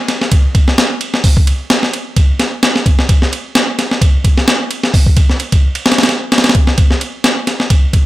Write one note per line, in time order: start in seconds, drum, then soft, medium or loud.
0.08 snare soft
0.08 ride medium
0.22 snare soft
0.32 kick loud
0.32 ride medium
0.55 kick medium
0.55 ride medium
0.68 snare soft
0.78 snare loud
0.78 ride medium
1.01 ride medium
1.14 snare medium
1.24 kick loud
1.24 open hi-hat medium
1.37 kick medium
1.47 ride medium
1.70 snare loud
1.70 ride medium
1.83 snare medium
1.93 ride medium
2.16 kick loud
2.16 ride medium
2.40 snare medium
2.40 ride medium
2.63 snare loud
2.63 ride medium
2.76 snare medium
2.86 kick loud
2.86 ride medium
2.99 snare soft
3.09 kick loud
3.09 ride medium
3.22 snare soft
3.33 ride medium
3.55 snare loud
3.55 ride medium
3.79 snare soft
3.79 ride medium
3.91 snare soft
4.01 kick loud
4.01 ride medium
4.24 kick loud
4.24 ride medium
4.38 snare soft
4.48 snare loud
4.48 ride medium
4.71 ride medium
4.84 snare medium
4.94 kick loud
4.94 open hi-hat medium
5.06 kick loud
5.17 kick loud
5.17 ride medium
5.30 snare soft
5.40 ride medium
5.52 kick loud
5.52 ride medium
5.75 ride medium
5.86 snare medium
5.86 ride medium
5.92 snare medium
5.92 ride medium
5.98 snare medium
5.98 ride medium
6.03 snare medium
6.03 ride medium
6.09 snare medium
6.09 ride medium
6.32 snare medium
6.32 ride medium
6.38 snare medium
6.38 ride medium
6.44 snare medium
6.44 ride medium
6.49 snare medium
6.49 ride medium
6.55 kick loud
6.55 ride medium
6.67 snare soft
6.78 kick loud
6.78 ride medium
6.91 snare soft
7.01 ride medium
7.24 snare loud
7.24 ride medium
7.47 snare soft
7.47 ride medium
7.60 snare soft
7.70 kick loud
7.70 ride medium
7.93 kick medium
7.93 ride medium